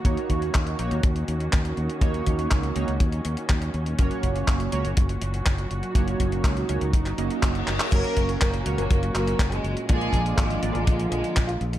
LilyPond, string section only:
\new Staff \with { instrumentName = "String section" } { \time 4/4 \key ges \major \tempo 4 = 122 << { <ees bes ges'>1~ | <ees bes ges'>1 | <bes, ges ges'>1~ | <bes, ges ges'>1 |
<bes, ges ges'>1 | <d f f'>1 | } \\ { des'1~ | des'1~ | des'1 | ees'1 |
des'1 | bes1 | } >> }